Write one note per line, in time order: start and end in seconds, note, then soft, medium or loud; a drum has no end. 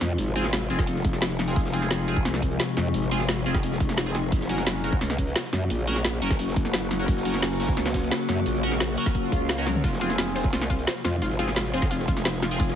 0.00 0.17 F2 medium
0.00 4.28 C3 medium
0.00 4.28 F3 medium
0.00 4.28 G#3 medium
0.00 1.54 F4 medium
0.00 snare medium
0.00 closed hi-hat medium
0.00 closed hi-hat loud
0.00 cabasa medium
0.18 0.69 G#1 loud
0.18 closed hi-hat medium
0.27 closed hi-hat soft
0.27 cabasa soft
0.36 0.45 C4 loud
0.36 0.45 F4 medium
0.36 0.45 G#4 loud
0.36 closed hi-hat medium
0.36 cabasa medium
0.44 snare soft
0.53 snare loud
0.53 closed hi-hat medium
0.61 cabasa soft
0.70 1.55 F1 loud
0.70 0.79 C4 loud
0.70 0.79 F4 medium
0.70 0.79 G#4 loud
0.70 closed hi-hat medium
0.70 open hi-hat medium
0.70 cabasa medium
0.79 kick loud
0.79 snare soft
0.87 closed hi-hat loud
0.87 closed hi-hat medium
0.96 snare soft
0.96 cabasa soft
1.05 kick loud
1.05 closed hi-hat loud
1.05 closed hi-hat medium
1.05 cabasa medium
1.13 snare soft
1.22 snare loud
1.22 closed hi-hat medium
1.30 snare soft
1.30 cabasa soft
1.39 snare medium
1.39 closed hi-hat medium
1.39 closed hi-hat loud
1.39 cabasa medium
1.48 1.57 C4 loud
1.48 1.57 F4 medium
1.48 1.57 G#4 loud
1.56 1.89 F1 loud
1.56 4.29 D#4 loud
1.56 kick loud
1.56 closed hi-hat medium
1.65 snare medium
1.65 cabasa soft
1.73 2.06 C4 loud
1.73 2.06 F4 medium
1.73 2.06 G#4 loud
1.73 closed hi-hat medium
1.73 cabasa medium
1.82 snare soft
1.82 closed hi-hat soft
1.90 2.24 F1 loud
1.90 snare loud
1.90 closed hi-hat medium
1.99 snare soft
1.99 cabasa soft
2.08 2.17 C4 medium
2.08 2.17 F4 medium
2.08 2.17 G#4 loud
2.08 closed hi-hat medium
2.08 cabasa medium
2.17 kick loud
2.25 2.58 C2 loud
2.25 snare medium
2.25 closed hi-hat medium
2.34 snare medium
2.34 cabasa soft
2.42 kick medium
2.42 closed hi-hat medium
2.42 cabasa medium
2.51 closed hi-hat soft
2.60 snare loud
2.60 closed hi-hat medium
2.68 snare medium
2.68 cabasa soft
2.77 2.93 F2 medium
2.77 snare soft
2.77 closed hi-hat medium
2.77 cabasa medium
2.94 3.45 G#1 loud
2.94 closed hi-hat medium
3.02 closed hi-hat soft
3.02 cabasa soft
3.11 3.21 C4 medium
3.11 3.21 F4 medium
3.11 3.21 G#4 loud
3.11 closed hi-hat medium
3.11 cabasa medium
3.20 snare soft
3.28 snare loud
3.28 closed hi-hat medium
3.37 cabasa soft
3.45 4.31 F1 loud
3.45 3.55 C4 medium
3.45 3.55 F4 medium
3.45 3.55 G#4 loud
3.45 closed hi-hat medium
3.45 open hi-hat medium
3.45 cabasa medium
3.55 kick loud
3.55 snare soft
3.63 closed hi-hat medium
3.72 snare soft
3.72 cabasa soft
3.80 kick loud
3.80 closed hi-hat medium
3.80 cabasa medium
3.89 snare soft
3.97 snare loud
3.97 closed hi-hat medium
4.06 4.16 C4 loud
4.06 4.16 F4 medium
4.06 4.16 G#4 loud
4.06 snare soft
4.06 cabasa soft
4.15 snare soft
4.15 closed hi-hat medium
4.15 cabasa medium
4.32 4.65 F#1 loud
4.32 9.80 C#3 medium
4.32 9.80 F#3 medium
4.32 9.80 A#3 medium
4.32 9.80 F#4 medium
4.32 kick loud
4.32 closed hi-hat medium
4.41 snare medium
4.41 cabasa soft
4.49 4.82 C#4 loud
4.49 4.82 F#4 medium
4.49 4.82 A#4 loud
4.49 closed hi-hat medium
4.49 cabasa medium
4.58 snare soft
4.58 closed hi-hat soft
4.67 5.00 F#1 loud
4.67 snare loud
4.67 closed hi-hat medium
4.75 snare soft
4.75 cabasa soft
4.84 4.93 C#4 medium
4.84 4.93 F#4 medium
4.84 4.93 A#4 loud
4.84 closed hi-hat medium
4.84 cabasa medium
4.92 kick loud
5.01 5.34 C#2 loud
5.01 snare medium
5.01 closed hi-hat medium
5.10 snare soft
5.10 cabasa soft
5.18 kick medium
5.18 closed hi-hat medium
5.18 cabasa medium
5.27 closed hi-hat soft
5.35 snare loud
5.35 closed hi-hat medium
5.44 snare soft
5.44 cabasa soft
5.53 5.69 F#2 loud
5.53 snare soft
5.53 closed hi-hat medium
5.53 cabasa medium
5.70 6.20 A#1 loud
5.70 closed hi-hat medium
5.79 closed hi-hat soft
5.79 cabasa soft
5.87 5.97 C#4 medium
5.87 5.97 F#4 medium
5.87 5.97 A#4 loud
5.87 closed hi-hat medium
5.87 cabasa medium
5.96 snare soft
6.04 snare loud
6.04 closed hi-hat medium
6.13 cabasa soft
6.22 7.07 F#1 loud
6.22 6.31 C#4 medium
6.22 6.31 F#4 medium
6.22 6.31 A#4 loud
6.22 closed hi-hat medium
6.22 open hi-hat medium
6.22 cabasa medium
6.30 kick loud
6.30 snare soft
6.39 closed hi-hat medium
6.39 closed hi-hat loud
6.48 snare soft
6.48 cabasa soft
6.56 kick loud
6.56 closed hi-hat medium
6.56 cabasa medium
6.65 snare soft
6.73 snare loud
6.73 closed hi-hat loud
6.73 closed hi-hat medium
6.82 snare soft
6.82 cabasa soft
6.91 snare soft
6.91 closed hi-hat loud
6.91 closed hi-hat medium
6.91 cabasa medium
6.99 7.09 C#4 medium
6.99 7.09 F#4 medium
6.99 7.09 A#4 loud
7.08 7.41 F#1 loud
7.08 kick loud
7.08 closed hi-hat medium
7.17 snare soft
7.17 cabasa soft
7.25 7.58 C#4 loud
7.25 7.58 F#4 medium
7.25 7.58 A#4 loud
7.25 closed hi-hat medium
7.25 cabasa medium
7.34 snare soft
7.34 closed hi-hat soft
7.42 7.76 F#1 loud
7.42 snare loud
7.42 closed hi-hat medium
7.51 snare soft
7.51 cabasa soft
7.59 7.69 C#4 loud
7.59 7.69 F#4 medium
7.59 7.69 A#4 loud
7.59 snare loud
7.59 closed hi-hat medium
7.59 cabasa medium
7.68 kick loud
7.68 snare soft
7.76 8.10 C#2 loud
7.76 snare medium
7.76 closed hi-hat medium
7.85 snare loud
7.85 snare soft
7.85 closed hi-hat medium
7.85 cabasa soft
7.94 kick medium
7.94 snare loud
7.94 closed hi-hat medium
7.94 cabasa medium
8.03 closed hi-hat medium
8.11 snare loud
8.11 closed hi-hat medium
8.20 snare soft
8.20 cabasa soft
8.28 8.45 F#2 medium
8.28 snare soft
8.28 closed hi-hat medium
8.28 cabasa medium
8.46 8.96 A#1 loud
8.46 closed hi-hat medium
8.55 closed hi-hat soft
8.55 cabasa soft
8.63 8.72 C#4 loud
8.63 8.72 F#4 medium
8.63 8.72 A#4 loud
8.63 closed hi-hat medium
8.63 cabasa medium
8.72 snare soft
8.80 snare loud
8.80 closed hi-hat medium
8.80 closed hi-hat loud
8.89 cabasa soft
8.97 9.07 C#4 medium
8.97 9.07 F#4 medium
8.97 9.07 A#4 loud
8.97 closed hi-hat medium
8.97 open hi-hat medium
8.97 cabasa medium
9.06 kick loud
9.06 snare soft
9.15 kick medium
9.15 closed hi-hat medium
9.15 swell medium
9.24 cabasa soft
9.32 9.83 C#2 loud
9.32 kick loud
9.32 closed hi-hat medium
9.32 cabasa medium
9.49 snare loud
9.49 closed hi-hat medium
9.58 9.67 C#4 loud
9.58 9.67 F#4 medium
9.58 9.67 A#4 loud
9.58 snare soft
9.58 cabasa soft
9.67 snare soft
9.67 closed hi-hat loud
9.67 closed hi-hat medium
9.67 high tom medium
9.67 cabasa medium
9.75 mid tom medium
9.84 10.17 F1 loud
9.84 12.75 C3 medium
9.84 12.75 F3 medium
9.84 12.75 G#3 medium
9.84 12.75 F4 medium
9.84 9.96 F4 medium
9.84 kick loud
9.84 closed hi-hat medium
9.84 ride medium
9.92 snare soft
9.92 cabasa soft
10.01 10.34 C4 loud
10.01 10.09 F4 medium
10.01 10.34 F4 medium
10.01 10.34 G#4 loud
10.01 closed hi-hat medium
10.01 closed hi-hat loud
10.01 ride soft
10.01 cabasa medium
10.10 snare soft
10.10 closed hi-hat soft
10.18 10.51 F1 loud
10.18 10.27 F4 medium
10.18 snare loud
10.18 closed hi-hat medium
10.18 ride medium
10.26 snare soft
10.26 cabasa soft
10.36 10.45 C4 medium
10.36 10.45 F4 medium
10.36 10.45 G#4 loud
10.36 10.40 C5 medium
10.36 closed hi-hat loud
10.36 closed hi-hat medium
10.36 ride medium
10.36 cabasa medium
10.44 kick loud
10.53 10.86 C2 loud
10.53 10.61 F4 medium
10.53 snare medium
10.53 closed hi-hat loud
10.53 closed hi-hat medium
10.53 ride medium
10.61 snare medium
10.61 cabasa soft
10.70 10.78 F4 medium
10.70 kick medium
10.70 closed hi-hat medium
10.70 closed hi-hat loud
10.70 ride medium
10.70 cabasa medium
10.79 closed hi-hat soft
10.87 11.00 C5 medium
10.87 snare loud
10.87 closed hi-hat medium
10.87 closed hi-hat loud
10.87 ride medium
10.95 snare medium
10.95 cabasa soft
11.04 11.20 F2 loud
11.04 11.13 F4 medium
11.04 snare medium
11.04 closed hi-hat medium
11.04 closed hi-hat loud
11.04 ride medium
11.04 cabasa medium
11.22 11.72 G#1 loud
11.22 11.34 F4 medium
11.22 closed hi-hat medium
11.22 ride medium
11.30 closed hi-hat soft
11.30 cabasa soft
11.39 11.48 C4 medium
11.39 11.47 F4 medium
11.39 11.48 F4 medium
11.39 11.48 G#4 loud
11.39 closed hi-hat loud
11.39 closed hi-hat medium
11.39 ride soft
11.39 cabasa medium
11.47 snare soft
11.56 11.64 F4 medium
11.56 snare loud
11.56 closed hi-hat medium
11.56 closed hi-hat loud
11.56 ride medium
11.65 cabasa soft
11.73 12.58 F1 loud
11.73 11.83 C4 medium
11.73 11.83 F4 medium
11.73 11.83 G#4 loud
11.73 11.78 C5 medium
11.73 closed hi-hat medium
11.73 open hi-hat medium
11.73 ride medium
11.73 cabasa medium
11.82 kick loud
11.82 snare soft
11.91 11.99 F4 medium
11.91 closed hi-hat medium
11.91 ride medium
11.99 snare soft
11.99 cabasa soft
12.08 12.16 F4 medium
12.08 kick loud
12.08 closed hi-hat medium
12.08 ride medium
12.08 cabasa medium
12.17 snare soft
12.25 12.37 C5 medium
12.25 snare loud
12.25 closed hi-hat medium
12.25 ride medium
12.34 snare soft
12.34 cabasa soft
12.42 12.51 F4 medium
12.42 snare medium
12.42 closed hi-hat medium
12.42 ride medium
12.42 cabasa medium
12.51 12.60 C4 medium
12.51 12.60 F4 medium
12.51 12.60 G#4 loud
12.60 12.75 F1 loud
12.60 12.72 F4 medium
12.60 kick loud
12.60 closed hi-hat medium
12.60 ride medium
12.68 snare medium
12.68 cabasa soft